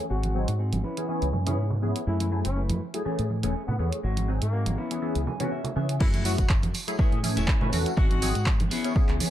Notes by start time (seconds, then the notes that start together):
0.10 G#1 C4 F#4 G#4
0.23 closed hi-hat, high conga
0.34 F#3 C4 D#4 G#4, tambourine
0.48 G#2, closed hi-hat
0.59 C4 F#4 G#4
0.73 G#1, closed hi-hat, high conga
0.83 C#4 E4 B4, tambourine
0.97 E3 B3 C#4 G#4, closed hi-hat, tambourine
1.08 E3 B3 C#4 G#4
1.22 C#2, closed hi-hat
1.33 F#2, tambourine, high conga, low conga
1.46 E3 B3 C#4 E4 G#4, closed hi-hat, tambourine, low conga
1.57 G#2, tambourine
1.70 low conga
1.82 E3 B3 C#4 G#4, muted clean electric guitar stroke, tambourine, high conga
1.96 closed hi-hat, tambourine
2.07 F#2 A3 E4 G#4
2.20 E4, closed hi-hat, high conga
2.31 F#3 A3 E4 G#4, tambourine
2.45 F#1 C#4, closed hi-hat
2.56 A3 E4 B4
2.69 F#2, closed hi-hat, high conga
2.81 tambourine
2.94 F#3 A3 E4 G#4, closed hi-hat
3.05 E3 A3 C#4 G#4, muted fingered electric bass stroke
3.19 A2, closed hi-hat
3.30 tambourine, high conga
3.43 E1 E3 A3 C#4 G#4, closed hi-hat, tambourine
3.55 tambourine
3.68 A2 B3, low conga
3.79 E2 E3 A3 B3 C#4 G#4, muted clean electric guitar stroke, tambourine, high conga
3.93 closed hi-hat, tambourine
4.03 G#1 G#3 C4 F#4
4.17 closed hi-hat, high conga
4.28 F#3 C4 D#4 G#4, tambourine
4.42 G#2 A#3, closed hi-hat, tambourine
4.53 G#3 C4 F#4
4.66 G#1, closed hi-hat, high conga
4.77 B3 C#4 E4, tambourine
4.91 E3 B3 C#4 G#4, closed hi-hat, tambourine
5.02 E3 B3 C#4 G#4
5.15 C#2, closed hi-hat
5.27 G#5, tambourine, high conga, low conga
5.40 E3 B3 C#4 F#4 G#4, closed hi-hat, tambourine, low conga
5.51 E5, tambourine
5.64 closed hi-hat, low conga
5.76 C#3 E3 B3 C#4 G#4 E5, muted clean electric guitar stroke, tambourine, high conga
5.89 closed hi-hat, tambourine
6.00 F#2 A3 E4 F#4 G#4, kick, crash, tambourine
6.14 E4, closed hi-hat, high conga
6.25 F#3 A3 E4 F#4 G#4, open hi-hat, tambourine
6.38 F#1 F#4, kick, closed hi-hat, tambourine
6.49 kick, clap
6.63 F#2, muted clean electric guitar stroke, closed hi-hat, high conga
6.74 muted clean electric guitar stroke, open hi-hat, tambourine
6.87 F#3 A3 E4 G#4, closed hi-hat, tambourine
6.99 E3 A3 C#4 E4 G#4, muted fingered electric bass stroke, kick, tambourine
7.12 A2, closed hi-hat
7.23 E3 A3 C#4 G#4, open hi-hat, tambourine, high conga
7.37 E1 A3 C#4 E4 G#4, closed hi-hat, tambourine
7.48 kick, clap
7.61 A2 E3 A3 C#4 B4, low conga
7.72 E2 E3 A3 C#4 F#4, open hi-hat, tambourine, high conga
7.86 closed hi-hat, tambourine
7.97 G#1 C4 D#4 F#4 G#4, kick
8.11 closed hi-hat, high conga
8.21 F#3 C4 D#4 G#4, open hi-hat, tambourine
8.35 G#2, closed hi-hat, tambourine
8.46 kick, clap, tambourine
8.60 G#1, muted clean electric guitar stroke, closed hi-hat, high conga
8.71 B3 C#4 E4 G#4, open hi-hat, tambourine
8.84 E3 B3 C#4 G#4, closed hi-hat, tambourine
8.96 E3 B3 C#4 G#4, kick
9.09 C#2, clap, closed hi-hat
9.20 E3 B3 C#4 G#4, open hi-hat, tambourine, high conga